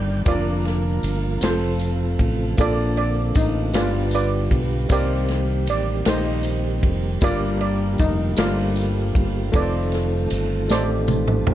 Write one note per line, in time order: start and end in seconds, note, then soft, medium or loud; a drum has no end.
0.00 0.23 G1 medium
0.00 0.23 D#3 medium
0.00 0.23 G3 medium
0.00 0.28 G3 medium
0.00 0.28 A#3 medium
0.00 0.28 D4 medium
0.00 0.28 D#4 medium
0.00 0.27 F4 medium
0.00 0.28 G4 medium
0.00 0.23 A#4 medium
0.00 0.23 D5 medium
0.00 0.27 D5 medium
0.00 0.22 G5 medium
0.25 0.99 F1 medium
0.25 1.41 D3 medium
0.25 2.56 F3 medium
0.25 1.41 A#3 medium
0.25 0.32 C4 medium
0.25 2.56 F4 medium
0.25 1.14 F4 medium
0.25 1.39 F4 medium
0.25 1.41 A#4 medium
0.25 1.39 A#4 medium
0.25 1.15 A#4 medium
0.25 1.46 D5 medium
0.25 kick loud
0.25 ride medium
0.25 tambourine medium
0.32 1.16 D4 medium
0.65 snare soft
0.65 ride soft
1.03 1.39 G1 medium
1.03 ride medium
1.03 tambourine soft
1.41 2.15 F1 medium
1.41 2.57 C3 medium
1.41 2.29 C4 medium
1.41 3.71 C4 medium
1.41 2.30 F4 medium
1.41 2.55 F4 medium
1.41 1.50 G4 medium
1.41 2.56 A4 medium
1.41 2.55 A4 medium
1.41 2.62 C5 medium
1.41 snare loud
1.41 ride medium
1.41 tambourine medium
1.50 2.34 A4 medium
1.79 ride soft
1.79 tambourine soft
2.19 2.55 A1 medium
2.19 kick medium
2.19 ride medium
2.57 3.32 A#1 loud
2.57 4.87 D3 medium
2.57 3.71 D3 medium
2.57 3.45 A#3 medium
2.57 3.73 A#3 medium
2.57 3.46 D4 medium
2.57 4.88 F4 medium
2.57 3.46 F4 medium
2.57 3.73 A4 medium
2.57 3.47 A4 medium
2.57 3.47 D5 medium
2.57 kick loud
2.57 ride medium
2.57 tambourine medium
2.61 3.72 F4 medium
2.61 3.72 A4 medium
2.61 2.97 D5 medium
2.97 3.33 D5 medium
2.97 ride soft
3.35 3.71 A1 medium
3.35 3.72 D#4 medium
3.35 kick loud
3.35 ride medium
3.35 tambourine soft
3.72 4.47 G1 medium
3.72 4.86 G2 medium
3.72 9.50 G3 medium
3.72 4.88 B3 medium
3.72 4.61 B3 medium
3.72 4.62 D4 medium
3.72 4.62 F4 medium
3.72 4.15 F4 loud
3.72 9.50 G4 medium
3.72 4.62 G4 medium
3.72 4.14 B4 medium
3.72 4.63 D5 medium
3.72 4.14 D5 medium
3.72 snare loud
3.72 ride loud
3.72 tambourine medium
4.11 4.87 F4 medium
4.11 4.87 B4 medium
4.11 4.91 D5 medium
4.11 ride soft
4.11 tambourine soft
4.51 4.87 B1 medium
4.51 kick medium
4.51 ride medium
4.89 5.68 C2 loud
4.89 6.02 C3 medium
4.89 7.20 D#3 medium
4.89 5.77 A#3 medium
4.89 9.50 A#3 medium
4.89 7.20 C4 medium
4.89 5.77 C4 medium
4.89 5.78 D#4 medium
4.89 5.78 G4 medium
4.89 6.03 G4 medium
4.89 6.04 A#4 medium
4.89 5.79 C5 loud
4.89 5.65 D5 medium
4.89 kick loud
4.89 ride medium
4.89 tambourine medium
5.29 snare soft
5.29 ride soft
5.67 6.04 A1 medium
5.67 6.09 D5 medium
5.67 ride medium
5.67 tambourine soft
6.05 6.80 A#1 medium
6.05 6.93 A#3 medium
6.05 6.94 C4 medium
6.05 6.94 D#4 medium
6.05 7.19 D#4 medium
6.05 6.94 G4 medium
6.05 7.19 G4 medium
6.05 7.27 C5 medium
6.05 6.95 D#5 medium
6.05 snare loud
6.05 ride loud
6.05 tambourine medium
6.43 ride soft
6.43 tambourine medium
6.83 7.19 F1 medium
6.83 kick medium
6.83 ride medium
7.21 7.96 G1 loud
7.21 8.35 G2 medium
7.21 9.52 D3 medium
7.21 8.09 G3 medium
7.21 8.10 A#3 medium
7.21 8.10 D4 medium
7.21 11.54 F4 medium
7.21 8.11 F4 medium
7.21 8.35 F4 medium
7.21 8.35 A#4 medium
7.21 8.11 A#4 medium
7.21 7.60 D5 loud
7.21 kick loud
7.21 ride medium
7.21 tambourine medium
7.61 8.01 D5 medium
7.61 ride soft
7.98 8.35 F1 loud
7.98 8.40 D#4 medium
7.98 kick medium
7.98 ride medium
7.98 tambourine medium
8.36 9.11 G1 loud
8.36 9.25 G3 medium
8.36 8.44 A3 medium
8.36 9.26 D4 medium
8.36 9.26 F4 medium
8.36 9.58 F4 loud
8.36 9.51 A#4 medium
8.36 9.26 C5 medium
8.36 9.51 D5 medium
8.36 snare loud
8.36 ride loud
8.36 tambourine medium
8.44 9.29 A#3 medium
8.76 ride soft
8.76 tambourine soft
9.15 9.51 G1 medium
9.15 kick medium
9.15 ride medium
9.52 10.27 F1 loud
9.52 11.54 D#3 medium
9.52 10.41 A3 medium
9.52 11.54 A3 medium
9.52 11.54 C4 medium
9.52 10.41 C4 medium
9.52 10.42 D#4 medium
9.52 10.42 F4 medium
9.52 11.54 A4 medium
9.52 10.67 A4 medium
9.52 9.61 B4 medium
9.52 10.70 D5 medium
9.52 kick loud
9.52 ride medium
9.52 tambourine medium
9.62 10.46 C5 medium
9.92 snare soft
9.92 ride soft
10.30 10.67 G1 medium
10.30 ride medium
10.30 tambourine soft
10.68 11.44 A1 medium
10.68 11.54 A3 medium
10.68 11.54 C4 medium
10.68 11.54 D#4 medium
10.68 11.54 F4 medium
10.68 11.54 G4 medium
10.68 11.54 A4 medium
10.68 11.54 D5 medium
10.68 snare medium
10.68 tambourine medium
10.73 11.54 C5 medium
11.08 high tom medium
11.08 tambourine medium
11.28 mid tom medium
11.47 11.54 A#1 loud
11.47 mid tom loud